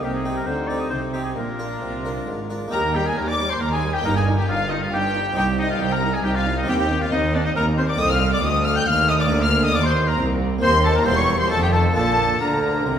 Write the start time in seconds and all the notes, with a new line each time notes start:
0.03 C2 C3 C4 D#4 G4 G5
0.14 G#4
0.25 C4 D#4 G4
0.37 A#4
0.47 D2 D3 C4 D#4 C5 G5
0.68 C4 D#4 G4 D5
0.80 D#5
0.90 C2 C3 C4 D#4 C5 G5
1.12 C4 D#4 G4 G#5
1.24 G#4
1.35 A#1 A#2 D4 F4 A#4 A#5
1.59 D4 F4 A#4
1.82 C2 C3
2.05 D4 F4 A#4
2.27 G#1 G#2
2.50 D4 F4 A#4
2.68 A#3 D#4 G4
2.72 D#2 G3 A#4 A#5
2.94 G3 G4 G5
3.06 G#4 G#5
3.17 D#2 G3 A#4 A#5
3.28 D5 D6
3.39 G3
3.50 C5 C6
3.61 D#2 G3 A#4 A#5
3.72 G#4 G#5
3.83 G3
3.94 G4 G5
4.01 A#3 D#4 G4
4.05 G1 G2 D#4 A#4 A#5
4.16 G#4 G#5
4.27 D#4
4.38 G4 G5
4.49 G1 G2 D#4 F4 F5
4.71 D#4 D#5
4.82 F4 F5
4.93 G1 G2 D#4 G4 G5
5.15 D#4
5.33 C2 C4 D#4 G4
5.37 C2 D#4 G4 G5
5.59 D#4 D#5
5.70 F4 F5
5.80 C2 D#4 G4 G5
5.92 A#4 A#5
6.03 D#4
6.13 G#4 G#5
6.24 C2 D#4 G4 G5
6.35 F4 F5
6.46 D#4
6.57 D#4 D#5
6.63 C4 D#4 G4
6.67 D#2 C4 G4 G5
6.79 G4 G5
6.90 C4
7.01 F4 F5
7.11 D#2 C4 D#4 D#5
7.33 C4 D4 D5
7.45 D#4 D#5
7.55 D#2 C4 A#4 A#5
7.77 C4 C5 C6
7.89 D5 D6
7.95 C4 D#4 A4 D#6
7.99 C2 C4 D#5 D#6
8.11 F5 F6
8.32 D5 D6
8.43 D2 A3 D#5 D#6
8.65 F5 F6
8.76 G5 G6
8.87 D#2 A3 F5 F6
9.08 D#5 D#6
9.20 D5 D6
9.26 A#3 D4 A#4
9.31 D2 A#3
9.41 F5 F6
9.63 D#5 D#6
9.74 D#2 A#3 D5 D6
9.85 C5 C6
10.07 A#4 A#5
10.18 C2 C4
10.59 A#3 C4 G4 C5 C6
10.63 D#2 A#3 C6
10.84 A4 A5
10.95 A#4 A#5
11.02 A#3 E4 G4 C5
11.06 E1 E2 G3 C6
11.16 C#5 C#6
11.39 C5 C6
11.47 F2 C4 D#4 F4 A4 A5
11.52 F1 F2 D#3 A5
11.62 G4 G5
11.72 A4 A5
11.92 A#1 A#2 A#3 D4 F4 A4 A5
11.96 A#2 D3
12.41 D2 D3 A#4 A#5
12.85 C2 C3